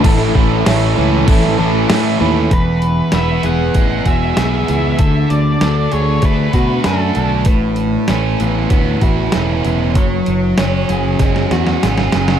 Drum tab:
CC |x---x---x---x---|----------------|----------------|----------------|
HH |----------------|o-o-o-o-o-o-o-o-|o-o-o-o-o-o-o-o-|o-o-o-o-o-o-o-o-|
SD |----o----o--o---|----o-------o---|----o-------o---|----o-------o---|
BD |o-o-----o-------|o-------o-o-----|o-------o-o-----|o-------o-o-----|

CC |----------------|
HH |o-o-o-o-o-o-o-o-|
SD |----o---oooooooo|
BD |o-------o-------|